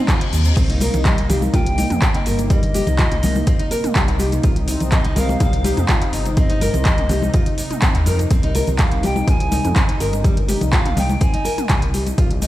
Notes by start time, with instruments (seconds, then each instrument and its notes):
Already playing: analog synth pad C3 D#4, reverse cymbal
0.08 nylon-string guitar F4, kick, clap, closed hi-hat, shaker
0.21 closed hi-hat
0.33 detuned saw bass D#2, nylon-string guitar D#4, open hi-hat, shaker
0.45 nylon-string guitar C4, closed hi-hat, shaker
0.57 detuned saw bass C2, analog synth pad C3 A#3 D#4, nylon-string guitar C4, kick, closed hi-hat, crash, shaker
0.70 nylon-string guitar D#4, closed hi-hat
0.80 nylon-string guitar A#4, open hi-hat, muted conga, high conga, shaker
0.94 detuned saw bass C2, closed hi-hat, low conga, shaker
1.05 nylon-string guitar G3, pan flute D#5, kick, clap, closed hi-hat, shaker
1.18 closed hi-hat, muted conga
1.29 nylon-string guitar G4, pan flute F5, open hi-hat, high conga, low conga, shaker
1.42 high conga, shaker
1.53 detuned saw bass C2, nylon-string guitar F4, pan flute G5, kick, closed hi-hat, mid tom, muted conga, shaker
1.66 closed hi-hat
1.78 nylon-string guitar D#4, open hi-hat, high conga, shaker
1.90 detuned saw bass F2, closed hi-hat, mid tom, muted conga, shaker
2.02 nylon-string guitar C4, kick, clap, closed hi-hat, shaker
2.14 nylon-string guitar D#4, closed hi-hat
2.26 detuned saw bass G1, nylon-string guitar A#4, open hi-hat, shaker
2.39 closed hi-hat, muted conga, shaker
2.50 nylon-string guitar G3, pan flute D#5, kick, closed hi-hat, shaker
2.63 closed hi-hat
2.74 nylon-string guitar G4, open hi-hat, muted conga, high conga, shaker
2.87 detuned saw bass C2, closed hi-hat, low conga, shaker
2.99 nylon-string guitar F4, kick, clap, closed hi-hat, shaker
3.12 closed hi-hat, mid tom, muted conga
3.23 nylon-string guitar D#4, open hi-hat, mid tom, high conga, low conga, shaker
3.35 high conga, shaker
3.47 nylon-string guitar C4, kick, closed hi-hat, muted conga, shaker
3.59 nylon-string guitar D#4, closed hi-hat
3.71 nylon-string guitar A#4, open hi-hat, shaker
3.84 closed hi-hat, mid tom, muted conga, shaker
3.95 detuned saw bass C2, nylon-string guitar G3, kick, clap, closed hi-hat, shaker
4.08 closed hi-hat
4.19 nylon-string guitar G4, open hi-hat, high conga, shaker
4.32 closed hi-hat, muted conga, shaker
4.43 detuned saw bass C2, analog synth pad C4, nylon-string guitar F4, kick, closed hi-hat, shaker
4.56 closed hi-hat
4.68 nylon-string guitar D#4, open hi-hat, muted conga, high conga, shaker
4.80 detuned saw bass C2, closed hi-hat, low conga, shaker
4.92 nylon-string guitar C4, pan flute D#5, kick, clap, closed hi-hat, shaker
5.04 nylon-string guitar D#4, closed hi-hat, muted conga
5.16 nylon-string guitar A#4, pan flute F5, open hi-hat, high conga, low conga, shaker
5.29 high conga, shaker
5.40 detuned saw bass C2, nylon-string guitar G3, pan flute F5, kick, closed hi-hat, mid tom, muted conga, shaker
5.53 closed hi-hat
5.64 nylon-string guitar G4, open hi-hat, high conga, shaker
5.77 detuned saw bass F2, closed hi-hat, mid tom, muted conga, shaker
5.88 nylon-string guitar F4, kick, clap, closed hi-hat, shaker
6.02 closed hi-hat
6.13 detuned saw bass G1, nylon-string guitar D#4, open hi-hat, shaker
6.26 closed hi-hat, muted conga, shaker
6.37 nylon-string guitar C4, pan flute D#5, kick, closed hi-hat, shaker
6.50 nylon-string guitar D#4, closed hi-hat
6.61 nylon-string guitar A#4, open hi-hat, muted conga, high conga, shaker
6.74 detuned saw bass C2, closed hi-hat, low conga, shaker
6.85 nylon-string guitar G3, kick, clap, closed hi-hat, shaker
6.98 closed hi-hat, mid tom, muted conga
7.09 nylon-string guitar G4, open hi-hat, mid tom, high conga, low conga, shaker
7.22 high conga, shaker
7.34 nylon-string guitar F4, kick, closed hi-hat, muted conga, shaker
7.46 closed hi-hat
7.58 nylon-string guitar D#4, open hi-hat, shaker
7.71 closed hi-hat, mid tom, muted conga, shaker
7.82 nylon-string guitar C4, kick, clap, closed hi-hat, shaker
7.95 detuned saw bass D#2, nylon-string guitar D#4, closed hi-hat
8.06 detuned saw bass F2, nylon-string guitar A#4, open hi-hat, high conga, shaker
8.19 closed hi-hat, muted conga, shaker
8.31 detuned saw bass C2, nylon-string guitar C4, kick, closed hi-hat, shaker
8.43 nylon-string guitar D#4, closed hi-hat
8.55 nylon-string guitar A#4, open hi-hat, muted conga, high conga, shaker
8.67 detuned saw bass C2, closed hi-hat, low conga, shaker
8.79 nylon-string guitar G3, pan flute F5, kick, clap, closed hi-hat, shaker
8.92 closed hi-hat, muted conga
9.03 nylon-string guitar G4, pan flute G5, open hi-hat, high conga, low conga, shaker
9.16 high conga, shaker
9.27 detuned saw bass C2, nylon-string guitar F4, pan flute G#5, kick, closed hi-hat, mid tom, muted conga, shaker
9.40 closed hi-hat
9.52 nylon-string guitar D#4, open hi-hat, high conga, shaker
9.64 detuned saw bass F2, closed hi-hat, mid tom, muted conga, shaker
9.76 nylon-string guitar C4, kick, clap, closed hi-hat, shaker
9.89 nylon-string guitar D#4, closed hi-hat
10.00 detuned saw bass G1, nylon-string guitar A#4, open hi-hat, shaker
10.13 closed hi-hat, muted conga, shaker
10.24 nylon-string guitar G3, kick, closed hi-hat, shaker
10.37 closed hi-hat
10.48 nylon-string guitar G4, open hi-hat, muted conga, high conga, shaker
10.61 detuned saw bass C2, closed hi-hat, low conga, shaker
10.73 nylon-string guitar F4, pan flute F5, kick, clap, closed hi-hat, shaker
10.85 closed hi-hat, mid tom, muted conga
10.97 nylon-string guitar D#4, pan flute G5, open hi-hat, mid tom, high conga, low conga, shaker
11.09 high conga, shaker
11.21 nylon-string guitar C4, pan flute G#5, kick, closed hi-hat, muted conga, shaker
11.33 nylon-string guitar D#4, closed hi-hat
11.45 nylon-string guitar A#4, open hi-hat, shaker
11.58 closed hi-hat, mid tom, muted conga, shaker
11.69 detuned saw bass C2, nylon-string guitar G3, kick, clap, closed hi-hat, shaker
11.82 closed hi-hat
11.94 nylon-string guitar G4, open hi-hat, high conga, shaker
12.06 closed hi-hat, muted conga, shaker
12.18 detuned saw bass C2, analog synth pad G3, nylon-string guitar F4, kick, closed hi-hat, shaker
12.31 closed hi-hat
12.42 nylon-string guitar D#4, open hi-hat, muted conga, high conga, shaker